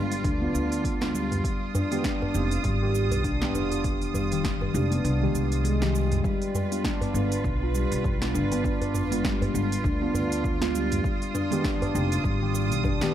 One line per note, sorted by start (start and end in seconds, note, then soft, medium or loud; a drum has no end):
0.00 0.17 G1 medium
0.00 0.12 G#3 medium
0.00 0.12 B3 medium
0.00 0.13 D4 medium
0.00 0.13 F4 medium
0.00 6.20 F4 medium
0.00 1.40 B4 medium
0.12 open hi-hat soft
0.12 shaker soft
0.24 0.47 D2 medium
0.24 0.40 D4 medium
0.24 kick loud
0.24 open hi-hat medium
0.24 djembe slap soft
0.24 shaker soft
0.41 0.97 B3 medium
0.41 0.53 B3 medium
0.41 0.98 D4 medium
0.41 0.98 F4 medium
0.54 1.38 D2 medium
0.54 0.71 D4 medium
0.54 shaker medium
0.72 open hi-hat soft
0.72 shaker soft
0.84 kick medium
0.84 open hi-hat medium
0.84 shaker soft
1.01 1.42 G#3 medium
1.01 1.43 B3 medium
1.01 1.43 D4 medium
1.01 1.43 F4 medium
1.01 snare medium
1.01 djembe slap medium
1.15 1.31 G3 medium
1.15 shaker medium
1.31 mid tom medium
1.31 open hi-hat soft
1.31 djembe slap soft
1.31 shaker soft
1.44 6.21 D#6 medium
1.44 kick loud
1.44 open hi-hat medium
1.44 shaker soft
1.74 1.90 D4 medium
1.74 mid tom medium
1.74 djembe tone medium
1.74 djembe bass medium
1.74 shaker medium
1.90 2.31 D#3 medium
1.90 2.31 G#3 medium
1.90 2.03 B3 medium
1.90 2.32 G4 medium
1.90 open hi-hat soft
1.90 djembe slap soft
1.90 shaker soft
2.04 2.21 D4 medium
2.04 kick loud
2.04 snare medium
2.04 open hi-hat medium
2.04 shaker soft
2.22 djembe tone medium
2.22 djembe bass medium
2.33 2.57 F1 medium
2.33 2.52 G#3 medium
2.33 2.52 C4 medium
2.33 2.52 D#4 medium
2.33 2.53 G4 medium
2.33 shaker medium
2.51 open hi-hat soft
2.51 shaker soft
2.64 3.12 G#1 medium
2.64 2.81 G3 medium
2.64 kick medium
2.64 open hi-hat soft
2.64 shaker soft
2.82 3.38 D#3 medium
2.82 3.38 G4 loud
2.95 djembe slap soft
2.95 shaker medium
3.11 3.55 B1 medium
3.11 open hi-hat soft
3.11 djembe bass medium
3.11 shaker soft
3.24 3.40 D4 medium
3.24 kick medium
3.24 open hi-hat medium
3.24 shaker soft
3.41 4.28 D#3 medium
3.41 3.53 B3 medium
3.41 4.29 G4 medium
3.41 snare medium
3.54 4.68 F1 medium
3.54 3.71 D4 medium
3.54 djembe tone medium
3.54 shaker medium
3.71 open hi-hat soft
3.71 djembe tone medium
3.71 shaker soft
3.84 kick loud
3.84 open hi-hat medium
3.84 shaker soft
4.01 open hi-hat soft
4.14 4.31 G3 medium
4.14 mid tom medium
4.14 djembe tone medium
4.14 djembe bass medium
4.14 shaker medium
4.31 4.71 D#3 medium
4.31 4.72 G4 medium
4.31 open hi-hat soft
4.31 djembe slap soft
4.31 shaker soft
4.44 kick loud
4.44 snare medium
4.44 open hi-hat medium
4.44 shaker soft
4.61 djembe tone medium
4.61 djembe bass medium
4.74 4.97 F1 loud
4.74 4.92 G#3 medium
4.74 4.92 C4 medium
4.74 4.90 D4 medium
4.74 4.93 D#4 medium
4.74 4.93 G4 medium
4.74 djembe tone soft
4.74 shaker medium
4.92 5.03 B3 medium
4.92 open hi-hat soft
4.92 shaker soft
5.04 5.27 C2 loud
5.04 5.21 D4 medium
5.04 open hi-hat medium
5.04 djembe slap soft
5.04 shaker soft
5.21 5.78 D#3 medium
5.21 5.77 G#3 medium
5.21 5.78 G4 medium
5.34 6.18 C2 medium
5.34 djembe slap soft
5.34 shaker medium
5.52 open hi-hat soft
5.52 shaker soft
5.64 5.74 G#3 loud
5.64 open hi-hat medium
5.64 shaker soft
5.82 6.23 D#3 medium
5.82 5.94 G3 medium
5.82 6.23 G4 medium
5.82 snare medium
5.82 open hi-hat soft
5.82 djembe slap medium
5.95 shaker medium
6.12 mid tom medium
6.12 open hi-hat soft
6.12 djembe slap soft
6.12 shaker soft
6.24 6.41 G3 medium
6.24 13.14 F4 medium
6.24 11.01 B4 medium
6.24 kick loud
6.24 shaker soft
6.42 open hi-hat soft
6.54 mid tom medium
6.54 djembe tone medium
6.54 shaker medium
6.71 7.11 B3 medium
6.71 7.12 D4 medium
6.71 7.12 F4 medium
6.71 open hi-hat medium
6.71 djembe slap soft
6.71 shaker soft
6.84 7.00 D4 medium
6.84 kick loud
6.84 snare medium
6.84 shaker soft
7.01 7.13 B3 medium
7.01 open hi-hat soft
7.01 djembe tone medium
7.01 djembe bass medium
7.13 7.36 G1 loud
7.13 7.32 G#3 medium
7.13 7.32 B3 medium
7.13 7.31 D4 medium
7.13 7.33 D4 medium
7.13 7.33 F4 medium
7.13 shaker medium
7.32 open hi-hat medium
7.32 shaker soft
7.44 7.83 B1 medium
7.44 kick loud
7.44 shaker soft
7.62 8.18 B3 medium
7.62 8.18 D4 medium
7.62 8.18 F4 medium
7.75 7.91 G3 medium
7.75 djembe slap soft
7.75 shaker medium
7.92 8.36 B1 medium
7.92 open hi-hat medium
7.92 shaker soft
8.04 kick loud
8.04 djembe bass medium
8.04 shaker soft
8.21 9.07 B3 medium
8.21 9.08 D4 medium
8.21 9.09 F4 medium
8.21 snare medium
8.21 open hi-hat soft
8.35 9.48 G1 medium
8.35 8.50 D4 medium
8.35 djembe tone medium
8.35 shaker medium
8.52 8.63 B3 medium
8.52 open hi-hat medium
8.52 djembe tone medium
8.52 shaker soft
8.64 8.81 D4 medium
8.64 kick loud
8.64 shaker soft
8.82 open hi-hat soft
8.82 djembe bass medium
8.94 mid tom medium
8.94 djembe tone medium
8.94 shaker medium
9.11 9.51 G#3 medium
9.11 9.51 B3 medium
9.11 9.52 D4 medium
9.11 9.52 F4 medium
9.11 open hi-hat medium
9.11 shaker soft
9.24 9.41 G3 medium
9.24 kick loud
9.24 snare medium
9.24 shaker soft
9.42 open hi-hat soft
9.42 djembe tone medium
9.42 djembe bass medium
9.53 9.77 G1 loud
9.53 9.72 G#3 medium
9.53 9.72 B3 medium
9.53 9.72 D4 medium
9.53 9.73 F4 medium
9.53 djembe tone soft
9.53 shaker medium
9.72 open hi-hat medium
9.72 shaker soft
9.84 10.07 D2 medium
9.84 10.00 D4 medium
9.84 kick loud
9.84 djembe slap soft
9.84 shaker soft
10.01 10.57 B3 medium
10.01 10.13 B3 medium
10.01 10.58 D4 medium
10.01 10.58 F4 loud
10.14 10.98 D2 medium
10.14 10.31 D4 medium
10.14 djembe bass medium
10.14 shaker medium
10.32 open hi-hat medium
10.32 shaker soft
10.44 kick loud
10.44 shaker soft
10.60 11.02 G#3 medium
10.60 11.02 B3 medium
10.60 11.03 D4 medium
10.60 11.03 F4 medium
10.60 snare medium
10.60 open hi-hat soft
10.60 djembe slap medium
10.74 10.91 G3 medium
10.74 shaker medium
10.91 mid tom medium
10.91 open hi-hat medium
10.91 djembe slap soft
10.91 shaker soft
11.04 13.14 D#6 medium
11.04 kick loud
11.04 shaker soft
11.22 open hi-hat soft
11.34 11.50 D4 medium
11.34 mid tom medium
11.34 djembe tone medium
11.34 shaker medium
11.51 11.91 D#3 medium
11.51 11.91 G#3 medium
11.51 11.63 B3 medium
11.51 11.92 G4 medium
11.51 open hi-hat soft
11.51 djembe slap soft
11.51 shaker soft
11.64 11.81 D4 medium
11.64 kick loud
11.64 snare medium
11.64 shaker soft
11.82 open hi-hat soft
11.82 djembe tone medium
11.82 djembe bass medium
11.93 12.17 F1 loud
11.93 12.12 G#3 medium
11.93 12.12 C4 medium
11.93 12.12 D#4 medium
11.93 12.13 G4 medium
11.93 shaker medium
12.12 open hi-hat medium
12.12 shaker soft
12.24 12.71 G#1 medium
12.24 12.41 G3 medium
12.24 kick loud
12.24 shaker soft
12.42 12.98 D#3 medium
12.42 12.98 G4 medium
12.54 djembe slap soft
12.54 shaker medium
12.71 13.13 B1 medium
12.71 open hi-hat medium
12.71 shaker soft
12.84 13.00 D4 medium
12.84 kick loud
12.84 djembe bass loud
12.84 shaker soft
13.01 13.14 D#3 medium
13.01 13.13 B3 medium
13.01 13.14 G4 loud
13.01 snare medium
13.01 open hi-hat soft